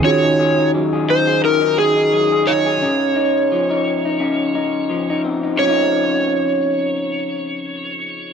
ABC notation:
X:1
M:4/4
L:1/16
Q:"Swing 16ths" 1/4=86
K:Db
V:1 name="Electric slide guitar"
d4 z2 c2 B2 A4 d2- | d12- d2 z2 | d16 |]
V:2 name="Tine electric piano"
[E,DFGA]16 | z16 | z16 |]
V:3 name="Clean electric guitar"
[E,A] E A E G, A E A [E,A] E A E G, A E A | [D,E]2 E2 F, E2 E [D,E]2 E2 F, E C E | [D,F,E]16 |]